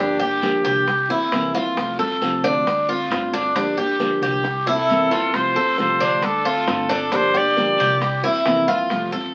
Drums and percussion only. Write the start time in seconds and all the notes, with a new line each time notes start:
0.20 high bongo, maracas
0.42 high bongo, short guiro, maracas
0.65 high bongo, short guiro, maracas
0.87 high bongo, long guiro, maracas
1.10 maracas
1.32 high bongo, low bongo, short guiro, maracas
1.54 high bongo, short guiro, maracas
1.77 high bongo, long guiro, maracas
2.00 maracas
2.22 high bongo, short guiro, maracas
2.44 short guiro, maracas
2.67 high bongo, long guiro, maracas
2.89 maracas
3.11 high bongo, low bongo, short guiro, maracas
3.33 short guiro, maracas
3.55 high bongo, long guiro, maracas
3.78 high bongo, maracas
3.99 high bongo, short guiro, maracas
4.22 high bongo, short guiro, maracas
4.44 high bongo, long guiro, maracas
4.67 low bongo, maracas
4.89 short guiro, maracas
5.11 low bongo, short guiro, maracas
5.34 high bongo, long guiro, maracas
5.56 maracas
5.78 high bongo, short guiro, maracas
6.00 short guiro, maracas
6.23 high bongo, long guiro, maracas
6.46 maracas
6.68 high bongo, low bongo, short guiro, maracas
6.90 short guiro, maracas
7.12 high bongo, long guiro, maracas
7.34 high bongo, maracas
7.56 high bongo, short guiro, maracas
7.78 high bongo, short guiro, maracas
8.01 high bongo, long guiro, maracas
8.24 maracas
8.45 high bongo, low bongo, short guiro, maracas
8.67 high bongo, short guiro, maracas
8.89 high bongo, long guiro, maracas
9.13 maracas